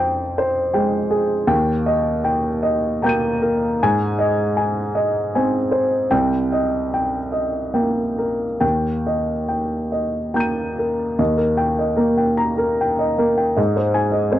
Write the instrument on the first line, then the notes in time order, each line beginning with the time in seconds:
upright piano
Already playing: F2 C5
0.00 G5
0.38 C5
0.74 G#3 G5
1.11 G#4
1.47 D#2 G5
1.86 D#5
2.25 G5
2.63 D#5
3.02 A#3 G5 A#5 G6
3.09 D#7
3.42 A#4
3.83 G#2 G#5
4.19 D#5
4.57 G#5
4.95 D#5
5.35 C4 G#5
5.71 C5
6.11 C2 G5
6.52 D#5
6.94 G5
7.32 D#5
7.74 A#3 G5
8.18 A#4
8.60 D#2 G5
9.07 D#5
9.48 G5
9.92 D#5
10.34 A#3 G5 A#5 G6
10.40 D#7
10.79 A#4
11.19 D#2 D#5
11.37 A#4
11.57 G5
11.79 D#5
11.97 A#3 A#4
12.18 G5
12.37 A#5
12.58 A#4
12.81 G5
12.99 D#5
13.18 A#3 A#4
13.37 G5
13.56 G#2 D#5
13.76 C5
13.94 G#5
14.12 D#5
14.32 C4 C5